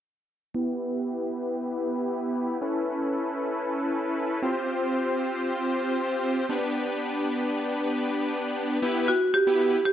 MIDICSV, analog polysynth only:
0, 0, Header, 1, 2, 480
1, 0, Start_track
1, 0, Tempo, 517241
1, 509, Time_signature, 4, 2, 24, 8
1, 9212, End_track
2, 0, Start_track
2, 0, Title_t, "Analog polysynth"
2, 0, Program_c, 0, 90
2, 505, Note_on_c, 0, 59, 77
2, 508, Note_on_c, 0, 64, 69
2, 511, Note_on_c, 0, 67, 70
2, 515, Note_on_c, 0, 71, 83
2, 2390, Note_off_c, 0, 59, 0
2, 2392, Note_off_c, 0, 64, 0
2, 2393, Note_off_c, 0, 67, 0
2, 2395, Note_off_c, 0, 71, 0
2, 2425, Note_on_c, 0, 61, 72
2, 2429, Note_on_c, 0, 64, 68
2, 2432, Note_on_c, 0, 69, 70
2, 2434, Note_on_c, 0, 71, 82
2, 4074, Note_off_c, 0, 61, 0
2, 4076, Note_off_c, 0, 64, 0
2, 4077, Note_off_c, 0, 69, 0
2, 4078, Note_off_c, 0, 71, 0
2, 4104, Note_on_c, 0, 60, 73
2, 4107, Note_on_c, 0, 65, 66
2, 4110, Note_on_c, 0, 67, 66
2, 4113, Note_on_c, 0, 72, 77
2, 5990, Note_off_c, 0, 60, 0
2, 5991, Note_off_c, 0, 65, 0
2, 5993, Note_off_c, 0, 67, 0
2, 5994, Note_off_c, 0, 72, 0
2, 6024, Note_on_c, 0, 59, 74
2, 6028, Note_on_c, 0, 62, 67
2, 6031, Note_on_c, 0, 67, 66
2, 6034, Note_on_c, 0, 71, 83
2, 8150, Note_off_c, 0, 59, 0
2, 8152, Note_off_c, 0, 62, 0
2, 8153, Note_off_c, 0, 67, 0
2, 8155, Note_off_c, 0, 71, 0
2, 8187, Note_on_c, 0, 59, 91
2, 8189, Note_on_c, 0, 64, 86
2, 8190, Note_on_c, 0, 67, 84
2, 8192, Note_on_c, 0, 71, 101
2, 8463, Note_off_c, 0, 59, 0
2, 8464, Note_off_c, 0, 64, 0
2, 8464, Note_off_c, 0, 67, 0
2, 8465, Note_off_c, 0, 71, 0
2, 8786, Note_on_c, 0, 59, 84
2, 8788, Note_on_c, 0, 64, 76
2, 8789, Note_on_c, 0, 67, 73
2, 8790, Note_on_c, 0, 71, 87
2, 9063, Note_off_c, 0, 59, 0
2, 9063, Note_off_c, 0, 64, 0
2, 9064, Note_off_c, 0, 67, 0
2, 9065, Note_off_c, 0, 71, 0
2, 9212, End_track
0, 0, End_of_file